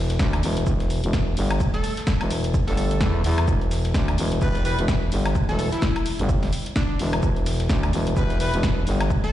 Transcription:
Already playing: fm bass E1
0.10 snare, closed hi-hat
0.19 fm bass D2, kick, snare, shaker
0.33 closed hi-hat, high woodblock
0.43 fm bass E1, open hi-hat, shaker
0.57 closed hi-hat
0.67 fm bass E1, kick, shaker
0.80 snare, closed hi-hat
0.90 open hi-hat, shaker
1.04 fm bass E1, closed hi-hat
1.13 kick, snare, shaker
1.37 fm bass G1, open hi-hat, shaker
1.51 snare, closed hi-hat, high woodblock
1.60 kick, shaker
1.74 digital synth lead A4, snare, closed hi-hat
1.84 open hi-hat, shaker
1.97 snare, closed hi-hat
2.07 kick, snare, shaker
2.21 fm bass E1, closed hi-hat, high woodblock
2.31 open hi-hat, shaker
2.44 closed hi-hat
2.54 kick, shaker
2.67 fm bass G1, digital synth lead A4, snare, open hi-hat
2.77 open hi-hat, shaker
2.91 closed hi-hat
3.01 fm bass E2, kick, snare, shaker
3.24 fm bass E2, open hi-hat
3.38 closed hi-hat, high woodblock
3.48 fm bass E1, kick, shaker
3.61 closed hi-hat
3.71 snare, open hi-hat, shaker
3.85 snare, closed hi-hat
3.94 fm bass D2, kick, snare, shaker
4.08 closed hi-hat, high woodblock
4.18 fm bass E1, open hi-hat, shaker
4.32 closed hi-hat
4.42 fm bass E1, horn section G3 E4 B4, kick, shaker
4.55 snare, closed hi-hat
4.65 horn section G3 E4 B4, open hi-hat, shaker
4.79 fm bass E1, closed hi-hat
4.88 kick, snare, shaker
5.12 fm bass G1, open hi-hat, shaker
5.26 snare, closed hi-hat, high woodblock
5.35 kick, shaker
5.49 fm bass E1, digital synth lead A4, snare, closed hi-hat
5.59 open hi-hat, shaker
5.72 digital synth lead E4, snare, closed hi-hat
5.82 kick, snare, shaker
5.96 closed hi-hat, high woodblock
6.06 open hi-hat, shaker
6.19 fm bass G1, closed hi-hat
6.29 kick, shaker
6.43 snare, open hi-hat
6.53 open hi-hat, shaker
6.66 closed hi-hat
6.76 digital synth lead D4, kick, snare, shaker
6.99 fm bass E1, open hi-hat
7.13 closed hi-hat, high woodblock
7.23 fm bass E1, kick, shaker
7.36 closed hi-hat
7.46 snare, open hi-hat, shaker
7.60 snare, closed hi-hat
7.69 fm bass D2, kick, snare, shaker
7.83 closed hi-hat, high woodblock
7.93 fm bass E1, open hi-hat, shaker
8.07 closed hi-hat
8.17 fm bass E1, horn section G3 E4 B4, kick, shaker
8.30 snare, closed hi-hat
8.40 horn section G3 E4 B4, open hi-hat, shaker
8.54 fm bass E1, closed hi-hat
8.63 kick, snare, shaker
8.87 fm bass G1, open hi-hat, shaker
9.01 snare, closed hi-hat, high woodblock
9.10 kick, shaker
9.24 digital synth lead A4, snare, closed hi-hat

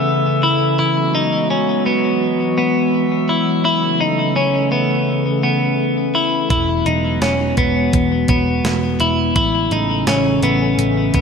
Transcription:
Already playing: ambient pad C#3 E3 A3 C#4 A4, clean electric guitar B3, synth texture E5
0.43 clean electric guitar E4
0.78 ambient pad F#3 G#3 B3 F#4, clean electric guitar E4
1.15 clean electric guitar D#4
1.50 clean electric guitar C#4
1.86 clean electric guitar B3
2.55 clean electric guitar B3, synth texture E5
3.29 clean electric guitar E4
3.64 ambient pad C#3 A3 C#4 A4, clean electric guitar E4
4.01 clean electric guitar D#4
4.36 clean electric guitar C#4
4.72 clean electric guitar B3
5.43 clean electric guitar B3
6.15 clean electric guitar E4
6.50 picked electric bass E1, ambient pad F#3 G#3 B3 F#4, clean electric guitar E4, kick, closed hi-hat
6.86 picked electric bass E1, clean electric guitar D#4, closed hi-hat
7.21 picked electric bass E1, clean electric guitar C#4, snare, closed hi-hat
7.57 picked electric bass E1, clean electric guitar B3, kick, closed hi-hat
7.93 picked electric bass E1, kick, closed hi-hat
8.28 picked electric bass E1, clean electric guitar B3, kick, closed hi-hat
8.64 picked electric bass E1, snare, closed hi-hat
9.00 picked electric bass E1, clean electric guitar E4, closed hi-hat
9.36 picked electric bass A1, ambient pad C#3 A3 C#4 A4, clean electric guitar E4, kick, closed hi-hat
9.71 picked electric bass A1, clean electric guitar D#4, closed hi-hat
10.07 picked electric bass A1, clean electric guitar C#4, snare, closed hi-hat
10.42 picked electric bass A1, clean electric guitar B3, closed hi-hat
10.78 picked electric bass A1, closed hi-hat
11.14 picked electric bass A1, clean electric guitar B3, kick, closed hi-hat

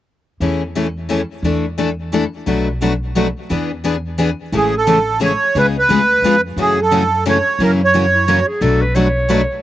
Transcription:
0.40 upright bass E2, steel-string acoustic guitar E3 G#3 A3 C#4 E4 G#4 A4
0.76 steel-string acoustic guitar E3 G#3 A3 C#4 E4 G#4 A4
1.09 steel-string acoustic guitar E3 G#3 A3 C#4 E4 G#4 A4
1.43 upright bass E2, steel-string acoustic guitar E3 A3 D4 E4 A4
1.78 steel-string acoustic guitar E3 A3 D4 E4 A4
2.12 steel-string acoustic guitar E3 A3 D4 E4 A4
2.47 upright bass B1, steel-string acoustic guitar B2 F#3 A3 D4 F#4 B4
2.81 steel-string acoustic guitar B2 F#3 A3 D4 F#4 B4
3.16 steel-string acoustic guitar B2 F#3 A3 D4 F#4 B4
3.49 upright bass E2, steel-string acoustic guitar E3 B3 D4 G#4 B4
3.84 steel-string acoustic guitar E3 B3 D4 G#4 B4
4.18 steel-string acoustic guitar E3 B3 D4 G#4 B4
4.52 upright bass A1, steel-string acoustic guitar C#3 E3 G#3 A3 C#4 E4 G#4 A4
4.57 accordion G#4
4.77 accordion A4
4.87 steel-string acoustic guitar C#3 E3 G#3 A3 C#4 E4 G#4 A4
5.20 steel-string acoustic guitar C#3 E3 G#3 A3 C#4 E4 G#4 A4
5.24 accordion C#5
5.55 upright bass C#2, steel-string acoustic guitar C#3 G#3 B3 F4 G#4, accordion B4
5.79 accordion B4
5.89 upright bass D2, steel-string acoustic guitar C#3 G#3 B3 F4 G#4
6.22 upright bass F2, steel-string acoustic guitar C#3 G#3 B3
6.26 steel-string acoustic guitar F4 G#4
6.56 upright bass F#2, steel-string acoustic guitar C#3 E3 F#3 A3 C#4 E4 F#4 A4
6.61 accordion G#4
6.82 accordion A4
6.91 steel-string acoustic guitar C#3 E3 F#3 A3 C#4 E4 F#4 A4
7.26 steel-string acoustic guitar C#3 E3 F#3 A3 C#4 E4 F#4 A4, accordion C#5
7.59 upright bass F#2, steel-string acoustic guitar C#3 E3 F#3 A#3 C#4 E4 F#4 A#4
7.63 accordion A#4
7.84 accordion C#5
7.93 steel-string acoustic guitar C#3 E3 F#3 A#3 C#4 E4 F#4 A#4
8.15 clarinet E4
8.27 steel-string acoustic guitar C#3 E3 F#3 A#3 C#4 E4 F#4 A#4, clarinet F#4
8.47 clarinet G#4
8.61 upright bass B1, steel-string acoustic guitar B2 F#3 A3 D4 F#4 B4, clarinet A4
8.82 clarinet B4
8.95 steel-string acoustic guitar B2 F#3 A3 D4 F#4 B4, clarinet C#5
9.28 steel-string acoustic guitar B2 F#3 A3 D4 F#4 B4

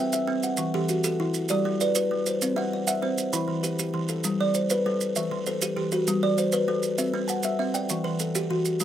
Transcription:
Already playing: kalimba C4 G5
0.00 kalimba E5
0.13 kalimba E5, maracas
0.27 kalimba C4
0.43 kalimba F#5, maracas
0.57 kalimba E3, maracas
0.74 kalimba E3 G4 A4
0.89 kalimba F#4, maracas
1.04 kalimba G4 A4, maracas
1.20 kalimba E3 E4
1.34 maracas
1.49 kalimba G3 G4 D5, maracas
1.65 kalimba G3
1.81 kalimba B4 D5, maracas
1.95 kalimba B4, maracas
2.11 kalimba G3
2.26 kalimba C5, maracas
2.42 kalimba C4, maracas
2.56 kalimba C4 E5 F#5
2.73 kalimba D5
2.87 kalimba E5 F#5, maracas
3.02 kalimba C4 C5
3.18 maracas
3.33 kalimba E3 E4 B5, maracas
3.48 kalimba E3
3.63 kalimba G4 B4, maracas
3.79 kalimba G4, maracas
3.94 kalimba E3
4.09 kalimba A4, maracas
4.24 kalimba G3, maracas
4.40 kalimba G3 D5
4.54 kalimba C5, maracas
4.70 kalimba B4, maracas
4.86 kalimba G3 A4
5.01 maracas
5.16 kalimba E3 E5, maracas
5.31 kalimba E3
5.46 kalimba A4 C5, maracas
5.62 kalimba G4, maracas
5.76 kalimba E3 G4
5.92 kalimba F#4 B4, maracas
6.07 kalimba G3, maracas
6.23 kalimba G3 D5
6.38 kalimba C5, maracas
6.52 kalimba B4, maracas
6.68 kalimba G3 A4
6.83 maracas
6.98 kalimba C4 E5, maracas
7.14 kalimba C4
7.28 kalimba F#5 A5, maracas
7.43 kalimba E5, maracas
7.59 kalimba C4 E5
7.74 kalimba D5 G5, maracas
7.89 kalimba E3, maracas
8.04 kalimba E3 B4
8.19 kalimba A4, maracas
8.35 kalimba G4, maracas
8.50 kalimba E3 F#4
8.65 maracas
8.80 kalimba G3, maracas

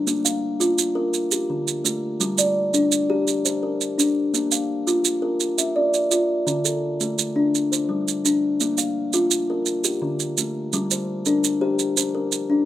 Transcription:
0.07 kalimba A#3, maracas
0.25 kalimba F5, maracas
0.60 kalimba F4, maracas
0.78 maracas
0.95 kalimba A#4
1.14 maracas
1.31 kalimba G4, maracas
1.50 kalimba D3
1.68 maracas
1.84 kalimba A3, maracas
2.20 kalimba G3, maracas
2.38 kalimba D5, maracas
2.74 kalimba D4, maracas
2.92 maracas
3.10 kalimba G4
3.27 maracas
3.45 kalimba C5, maracas
3.63 kalimba A#4
3.81 maracas
3.98 kalimba D4, maracas
4.34 kalimba A#3, maracas
4.52 kalimba F5, maracas
4.87 kalimba F4, maracas
5.05 maracas
5.22 kalimba A#4
5.40 maracas
5.58 kalimba E5, maracas
5.76 kalimba D5
5.94 maracas
6.11 kalimba F4, maracas
6.47 kalimba D3, maracas
6.65 kalimba A4, maracas
7.01 kalimba A3, maracas
7.19 maracas
7.36 kalimba D4
7.55 maracas
7.72 kalimba C5, maracas
7.89 kalimba G3
8.08 maracas
8.25 kalimba D4, maracas
8.60 kalimba A#3, maracas
8.78 kalimba F5, maracas
9.13 kalimba F4, maracas
9.31 maracas
9.50 kalimba A#4
9.66 maracas
9.84 kalimba G4, maracas
10.02 kalimba D3
10.20 maracas
10.38 kalimba A3, maracas
10.73 kalimba G3, maracas
10.91 kalimba C5, maracas
11.26 kalimba D4 A#4, maracas
11.44 maracas
11.61 kalimba G4 C5
11.79 maracas
11.97 kalimba C5, maracas
12.15 kalimba A#4
12.32 maracas
12.50 kalimba D4

